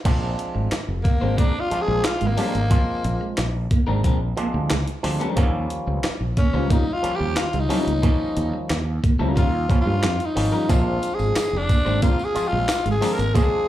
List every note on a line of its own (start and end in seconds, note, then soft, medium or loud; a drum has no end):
0.05 0.34 A#1 loud
0.05 0.77 F3 medium
0.05 0.77 G#3 medium
0.05 0.15 A#3 medium
0.05 0.78 C4 medium
0.05 0.78 D4 loud
0.05 kick loud
0.05 closed hi-hat loud
0.05 crash medium
0.38 muted clean electric guitar stroke soft
0.38 closed hi-hat medium
0.55 0.69 G#1 medium
0.55 0.65 G#3 medium
0.71 muted clean electric guitar stroke soft
0.71 muted fretless electric bass stroke soft
0.71 snare medium
0.71 clap medium
0.71 closed hi-hat medium
0.88 1.02 F1 medium
1.04 1.40 A#3 medium
1.04 1.15 A#3 medium
1.04 kick medium
1.04 closed hi-hat medium
1.21 1.36 G#1 medium
1.21 1.32 G#3 medium
1.21 1.35 G#3 medium
1.21 1.35 C4 medium
1.21 1.35 D4 medium
1.21 1.34 C5 medium
1.38 1.51 G#3 medium
1.38 1.48 A#3 medium
1.38 1.51 C4 medium
1.38 1.62 D4 loud
1.38 1.51 D4 medium
1.38 1.52 A#4 medium
1.38 kick loud
1.38 closed hi-hat medium
1.55 muted clean electric guitar stroke soft
1.60 1.83 F4 medium
1.71 2.07 F3 medium
1.71 2.07 G#3 medium
1.71 2.08 C4 medium
1.71 2.08 D4 medium
1.71 muted fretless electric bass stroke soft
1.71 closed hi-hat medium
1.82 2.06 G#4 loud
1.88 2.02 A#1 medium
1.88 1.98 G#3 medium
2.04 2.29 F4 medium
2.04 snare loud
2.04 clap medium
2.04 closed hi-hat loud
2.21 2.36 G#1 medium
2.21 2.31 G#3 medium
2.21 closed hi-hat soft
2.27 3.27 A#3 medium
2.37 2.56 F3 medium
2.37 2.58 G#3 medium
2.37 2.56 G#3 medium
2.37 2.56 C4 medium
2.37 2.58 C4 medium
2.37 2.56 D4 medium
2.37 2.58 D4 medium
2.37 2.58 A#4 loud
2.37 open hi-hat medium
2.54 2.69 G#1 medium
2.54 2.64 A#3 medium
2.54 closed hi-hat soft
2.70 3.43 F3 medium
2.70 3.43 G#3 medium
2.70 2.81 A#3 medium
2.70 3.43 C4 medium
2.70 3.44 F4 medium
2.70 kick loud
2.70 closed hi-hat loud
3.04 3.19 A#1 loud
3.04 muted clean electric guitar stroke soft
3.04 closed hi-hat medium
3.21 3.31 G#3 medium
3.37 3.66 A#1 medium
3.37 muted clean electric guitar stroke soft
3.37 snare medium
3.37 clap medium
3.37 closed hi-hat medium
3.71 3.81 A#3 medium
3.71 kick medium
3.71 closed hi-hat medium
3.87 4.04 G#1 medium
3.87 3.98 G#3 medium
3.87 4.01 G#3 medium
3.87 4.01 C4 medium
3.87 4.00 D4 medium
3.87 4.00 A#4 medium
4.04 4.33 A#1 medium
4.04 4.17 G#3 medium
4.04 4.17 C4 medium
4.04 4.17 D4 medium
4.04 4.18 A#4 medium
4.04 muted clean electric guitar stroke medium
4.04 kick medium
4.04 closed hi-hat medium
4.37 4.73 F3 medium
4.37 4.73 G#3 medium
4.37 4.48 A#3 medium
4.37 4.74 C4 medium
4.37 4.74 D4 medium
4.37 closed hi-hat medium
4.54 4.68 D2 medium
4.54 4.65 G#3 medium
4.70 4.85 C#2 medium
4.70 4.81 G#3 medium
4.70 snare loud
4.70 clap medium
4.70 closed hi-hat loud
4.87 closed hi-hat medium
5.03 5.18 D2 medium
5.03 5.22 F3 medium
5.03 5.22 G#3 medium
5.03 5.22 C4 medium
5.03 5.22 D4 loud
5.03 open hi-hat medium
5.20 5.32 F3 medium
5.20 5.41 G#3 medium
5.20 5.41 C4 medium
5.20 5.41 D4 medium
5.20 5.40 A#4 medium
5.20 closed hi-hat soft
5.36 5.66 D#2 loud
5.36 6.09 F3 medium
5.36 5.44 F#3 medium
5.36 6.09 A#3 medium
5.36 5.48 A#3 medium
5.36 6.10 C#4 loud
5.36 kick loud
5.36 closed hi-hat loud
5.43 6.12 G3 medium
5.70 muted clean electric guitar stroke soft
5.70 closed hi-hat medium
5.87 6.01 C#2 medium
5.87 5.98 G3 medium
6.04 muted fretless electric bass stroke medium
6.04 muted clean electric guitar stroke soft
6.04 snare loud
6.04 clap medium
6.04 closed hi-hat medium
6.20 6.35 A#1 medium
6.37 6.48 A#3 medium
6.37 6.72 C#4 medium
6.37 kick medium
6.37 closed hi-hat medium
6.54 6.68 C#2 loud
6.54 6.64 G3 medium
6.54 6.67 G3 medium
6.54 6.67 C#4 medium
6.54 6.67 F4 medium
6.54 6.66 C5 medium
6.70 6.83 G3 medium
6.70 6.81 A#3 medium
6.70 6.83 C#4 medium
6.70 6.95 D#4 medium
6.70 6.84 F4 medium
6.70 6.84 A#4 loud
6.70 kick medium
6.70 closed hi-hat medium
6.87 muted clean electric guitar stroke soft
6.93 7.17 F4 medium
7.02 7.39 F3 medium
7.02 7.39 G3 medium
7.02 7.40 A#3 medium
7.02 7.40 C#4 medium
7.02 muted fretless electric bass stroke soft
7.02 closed hi-hat medium
7.16 7.39 G4 loud
7.20 7.35 D#2 medium
7.20 7.31 G3 medium
7.36 7.62 F4 medium
7.36 muted fretless electric bass stroke soft
7.36 snare loud
7.36 clap medium
7.36 closed hi-hat loud
7.53 7.68 C#2 medium
7.53 7.64 G3 medium
7.53 closed hi-hat soft
7.60 8.59 D#4 medium
7.69 7.88 F3 medium
7.69 7.90 G3 medium
7.69 7.88 G3 medium
7.69 7.88 A#3 medium
7.69 7.90 C#4 medium
7.69 7.88 C#4 medium
7.69 7.90 F4 medium
7.69 7.91 A#4 medium
7.69 muted clean electric guitar stroke soft
7.69 open hi-hat medium
7.87 8.01 C#2 medium
7.87 7.98 A#3 medium
7.87 closed hi-hat soft
8.02 8.75 F3 medium
8.02 8.75 G3 medium
8.02 8.75 A#3 medium
8.02 8.14 A#3 medium
8.02 8.76 C#4 medium
8.02 kick loud
8.02 closed hi-hat loud
8.37 8.51 D#2 loud
8.37 muted clean electric guitar stroke soft
8.37 closed hi-hat medium
8.53 8.64 G3 medium
8.70 8.98 D#2 medium
8.70 muted clean electric guitar stroke soft
8.70 snare loud
8.70 clap medium
8.70 closed hi-hat medium
9.03 9.14 A#3 medium
9.03 kick medium
9.03 closed hi-hat medium
9.19 9.36 C#2 medium
9.19 9.30 G3 medium
9.19 9.35 G3 medium
9.19 9.35 C#4 medium
9.19 9.36 F4 medium
9.19 9.36 A#4 medium
9.36 9.65 D#2 loud
9.36 9.49 G3 medium
9.36 9.49 C#4 medium
9.36 9.50 F4 medium
9.36 9.78 F4 medium
9.36 9.50 A#4 loud
9.36 muted clean electric guitar stroke soft
9.36 kick medium
9.36 closed hi-hat medium
9.69 10.05 F3 medium
9.69 10.06 G3 medium
9.69 9.80 A#3 medium
9.69 10.06 A#3 medium
9.69 10.06 C#4 medium
9.69 kick medium
9.69 closed hi-hat medium
9.81 10.27 F4 medium
9.86 10.03 G2 medium
9.86 9.97 G3 medium
10.03 10.18 F2 medium
10.03 10.13 G3 medium
10.03 snare loud
10.03 clap medium
10.03 closed hi-hat loud
10.20 closed hi-hat soft
10.26 10.71 D#4 medium
10.35 10.51 G#1 medium
10.35 10.54 F3 medium
10.35 10.54 G3 medium
10.35 10.54 A#3 medium
10.35 10.54 C#4 medium
10.35 muted clean electric guitar stroke soft
10.35 open hi-hat medium
10.52 10.63 F3 medium
10.52 10.66 G3 medium
10.52 10.66 C#4 medium
10.52 10.66 F4 medium
10.52 10.65 A#4 medium
10.69 10.98 A#1 loud
10.69 11.41 F3 medium
10.69 11.42 G#3 medium
10.69 10.80 A#3 medium
10.69 11.42 C4 medium
10.69 11.42 D4 medium
10.69 11.16 F4 medium
10.69 kick loud
10.69 closed hi-hat loud
10.69 tambourine medium
11.02 muted clean electric guitar stroke soft
11.02 closed hi-hat medium
11.02 tambourine soft
11.15 11.59 G#4 medium
11.19 11.34 G#1 medium
11.19 11.30 G#3 medium
11.19 tambourine soft
11.36 muted fretless electric bass stroke soft
11.36 muted clean electric guitar stroke soft
11.36 snare loud
11.36 clap medium
11.36 closed hi-hat medium
11.36 tambourine medium
11.53 11.67 F1 medium
11.58 12.02 D4 medium
11.69 11.79 A#3 medium
11.69 kick medium
11.69 closed hi-hat medium
11.69 tambourine medium
11.85 12.00 G#1 medium
11.85 11.96 G#3 medium
11.85 11.99 G#3 medium
11.85 11.99 C4 medium
11.85 11.99 D4 medium
11.85 11.99 C5 medium
11.85 tambourine soft
12.02 12.15 G#3 medium
12.02 12.13 A#3 medium
12.02 12.16 C4 loud
12.02 12.16 D4 medium
12.02 12.26 F4 medium
12.02 12.16 A#4 medium
12.02 kick loud
12.02 closed hi-hat medium
12.02 tambourine medium
12.19 muted clean electric guitar stroke soft
12.19 tambourine soft
12.25 12.50 G#4 loud
12.35 12.71 F3 medium
12.35 12.72 G#3 medium
12.35 12.72 C4 medium
12.35 12.72 F4 medium
12.35 muted fretless electric bass stroke soft
12.35 closed hi-hat medium
12.35 tambourine medium
12.48 12.91 F4 loud
12.52 12.67 A#1 loud
12.52 12.63 G#3 medium
12.68 snare loud
12.68 clap loud
12.68 closed hi-hat loud
12.68 tambourine loud
12.86 13.00 G#1 medium
12.86 12.96 G#3 medium
12.86 closed hi-hat soft
12.91 13.14 G#4 loud
13.01 13.20 F3 medium
13.01 13.20 G#3 medium
13.01 13.15 G#3 medium
13.01 13.20 C4 medium
13.01 13.15 C4 medium
13.01 13.20 D4 medium
13.01 13.15 D4 loud
13.01 13.16 A#4 loud
13.01 open hi-hat medium
13.01 tambourine medium
13.13 13.36 A#4 loud
13.18 13.33 G#1 medium
13.18 13.29 A#3 medium
13.18 closed hi-hat soft
13.18 tambourine soft
13.35 13.68 F3 medium
13.35 13.68 G#3 medium
13.35 13.45 A#3 medium
13.35 13.68 C4 medium
13.35 13.42 C#4 medium
13.35 13.68 G#4 loud
13.35 kick loud
13.35 closed hi-hat loud
13.35 tambourine medium
13.42 13.68 D4 medium